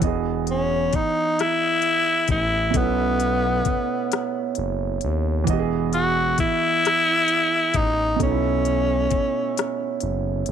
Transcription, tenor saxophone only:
0.50 C#4
0.96 D#4
1.40 E4
2.31 E4
2.77 B3
5.94 F#4
6.40 E4
7.76 D#4
8.23 C#4

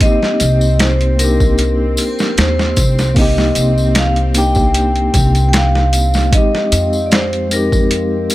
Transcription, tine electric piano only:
0.00 A#3 C4 D#4
0.06 G4
1.16 A#3 D4
1.22 D#4 G4
3.14 A#3 C4
3.19 D#4 G4
4.35 A#3 D4 D#4 G4
6.30 G#3 C4
6.35 D#4 G4
7.48 G#3 C4
7.53 D#4 G4

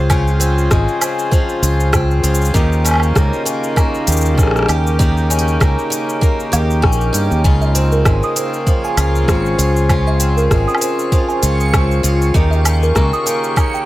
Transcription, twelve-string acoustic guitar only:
Already playing: F3 G#3 C4
0.10 C#3 F4
0.40 C4
0.71 G#3
1.01 C4
1.31 F3
1.63 F4
1.93 C4
2.23 F4
2.54 D#3 G4
2.85 C#4
3.15 A#3
3.45 C#4
3.76 A#3
4.07 G4
4.38 C#4
4.68 G4
4.99 D#3 G4
5.30 C#4
5.60 A#3
5.90 C#4
6.21 A#3
6.52 G4
6.82 C#4
7.13 G4
7.44 C#3 F4
7.75 C4
8.05 G#3
8.36 C4
8.67 F3
8.97 F4
9.28 C4
9.59 F4
9.89 C#3 F4
10.20 C4
10.51 G#3
10.81 C4
11.12 F3
11.43 F4
11.74 C4
12.03 F4
12.34 D#3 G4
12.65 C#4
12.95 A#3
13.26 C#4
13.56 A#3

